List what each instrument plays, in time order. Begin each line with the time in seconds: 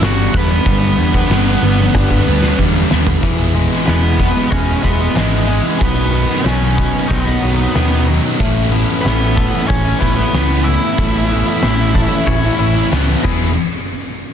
0.01 picked electric bass G1, distorted electric guitar G2 D3 G3 B3 D4, lead electric guitar F#4 F#5, snare, open hi-hat
0.33 picked electric bass E2, distorted electric guitar G2 D3 G3 B3 D4, lead electric guitar B4, kick
0.38 lead electric guitar B3
0.50 distorted electric guitar G3 B3 D4
0.65 picked electric bass G1, distorted electric guitar G2 D3 G3 B3 D4, kick, open hi-hat
0.98 picked electric bass E2, distorted electric guitar G2 D3 G3 B3 D4
1.14 distorted electric guitar G3 B3 D4, kick
1.30 picked electric bass G1, distorted electric guitar G2 D3 G3 B3, snare, open hi-hat
1.34 distorted electric guitar D4
1.63 picked electric bass G1, distorted electric guitar G2 D3 G3 B3 D4
1.79 distorted electric guitar G3 B3 D4, muted distorted electric guitar stroke
1.94 picked electric bass G1, distorted electric guitar G2 D3 G3 B3 D4, kick, high tom
2.10 distorted electric guitar G3 B3 D4, kick
2.26 picked electric bass D2, distorted electric guitar G2 D3 G3 B3 D4
2.42 distorted electric guitar G3 B3 D4, muted distorted electric guitar stroke, snare
2.58 picked electric bass E2, distorted electric guitar G2 D3 G3 B3 D4, kick
2.90 picked electric bass D#2, distorted electric guitar G2 D3 G3 B3 D4, snare
3.05 distorted electric guitar G3 B3 D4, floor tom
3.21 picked electric bass E1, distorted electric guitar E3 G#3 B3 E4, kick, open hi-hat
3.38 distorted electric guitar G#3 B3 E4
3.53 distorted electric guitar E3 G#3 B3 E4
3.72 distorted electric guitar G#3 B3 E4, snare
3.87 picked electric bass E1, distorted electric guitar E3 G#3 B3 E4, lead electric guitar B3 B4, snare, open hi-hat
4.19 distorted electric guitar E3 G#3 B3 E4, kick
4.35 distorted electric guitar G#3 B3 E4
4.50 picked electric bass E1, lead electric guitar C#4 C#5, clean electric guitar F#4, kick, open hi-hat
4.66 distorted electric guitar G#3 B3 E4
4.82 picked electric bass E1, distorted electric guitar E3 G#3 B3 E4, lead electric guitar B3 B4, kick
4.99 distorted electric guitar G#3 B3 E4
5.04 distorted electric guitar G#3 B3
5.13 picked electric bass G#1, distorted electric guitar E3 G#3 B3 E4, lead electric guitar G#3 G#4, snare, open hi-hat
5.18 distorted electric guitar E3 G#3 B3 E4
5.47 distorted electric guitar E3 G#3 B3 E4
5.63 distorted electric guitar G#3 B3 E4
5.69 distorted electric guitar G#3 B3
5.78 picked electric bass B1, distorted electric guitar B2 D#3 F#3 B3 D#4, kick, open hi-hat
5.82 distorted electric guitar D#3 F#3 B3 D#4, lead electric guitar B3 B4
5.94 distorted electric guitar F#3 B3 D#4
6.10 distorted electric guitar D#3 F#3 B3 D#4
6.15 distorted electric guitar D#3 F#3 B3 D#4
6.30 distorted electric guitar B3 D#4, snare
6.35 distorted electric guitar F#3
6.43 picked electric bass B1, distorted electric guitar B2 D#3 F#3 B3 D#4, lead electric guitar C#4 C#5, snare, open hi-hat
6.49 distorted electric guitar D#3 F#3 B3 D#4
6.77 distorted electric guitar D#3 F#3 B3 D#4, kick
6.92 distorted electric guitar F#3 B3 D#4
7.08 picked electric bass B1, lead electric guitar B3, clean electric guitar D#4, kick, open hi-hat
7.12 lead electric guitar B4
7.26 distorted electric guitar F#3 B3 D#4
7.41 picked electric bass B1, distorted electric guitar D#3 F#3 B3 D#4
7.58 distorted electric guitar F#3 B3 D#4
7.74 picked electric bass D#2, distorted electric guitar B2 D#3 F#3 B3 D#4, snare, open hi-hat
8.07 distorted electric guitar D#3 F#3 B3 D#4
8.23 distorted electric guitar F#3 B3 D#4
8.39 picked electric bass A1, distorted electric guitar A2 E3 A3 C#4 E4, kick, open hi-hat
8.54 distorted electric guitar A3 C#4 E4
8.71 distorted electric guitar E3 A3 C#4 E4, clean electric guitar B3
8.89 distorted electric guitar A3 C#4 E4
9.02 distorted electric guitar A2 E3 A3 C#4, lead electric guitar B3 B4, open hi-hat
9.06 picked electric bass A1, distorted electric guitar E4, snare
9.36 distorted electric guitar E3 A3 C#4 E4, clean electric guitar A4, kick
9.52 distorted electric guitar A3 C#4 E4
9.67 picked electric bass A1, lead electric guitar C#4 C#5, clean electric guitar C#5, kick, open hi-hat
9.85 distorted electric guitar A3 C#4 E4
10.00 picked electric bass A1, distorted electric guitar E3 A3 C#4, lead electric guitar B3 B4, kick
10.04 distorted electric guitar E4
10.15 lead electric guitar B3 B4, distorted electric guitar C#4 E4
10.20 distorted electric guitar A3
10.33 picked electric bass C#2, distorted electric guitar A2 E3 A3 C#4 E4, clean electric guitar B3, snare, open hi-hat
10.64 distorted electric guitar E3 A3 C#4, clean electric guitar E4, lead electric guitar E4 E5
10.68 distorted electric guitar E4
10.82 distorted electric guitar A3 C#4 E4
10.98 picked electric bass A1, distorted electric guitar A2 E3 A3 C#4 E4, kick, open hi-hat
11.15 distorted electric guitar A3 C#4 E4
11.30 distorted electric guitar E3 A3 C#4 E4, clean electric guitar B3
11.47 distorted electric guitar A3 C#4 E4
11.62 picked electric bass A1, distorted electric guitar A2 E3 A3 C#4 E4, snare, open hi-hat
11.79 snare
11.94 distorted electric guitar E3 A3 C#4 E4, clean electric guitar A4, kick
12.11 distorted electric guitar A3 C#4 E4
12.27 picked electric bass A1, clean electric guitar C#5, kick, open hi-hat
12.43 distorted electric guitar A3 C#4 E4
12.59 picked electric bass A1, distorted electric guitar E3 A3 C#4 E4
12.76 distorted electric guitar A3 C#4 E4
12.90 picked electric bass C#2, distorted electric guitar A2 E3 A3 C#4 E4, clean electric guitar B3, snare, open hi-hat
13.24 picked electric bass E1, distorted electric guitar E2 B2 E3 G#3 B3 E4 G#4, clean electric guitar F#3 B3 E4 G#4, kick, crash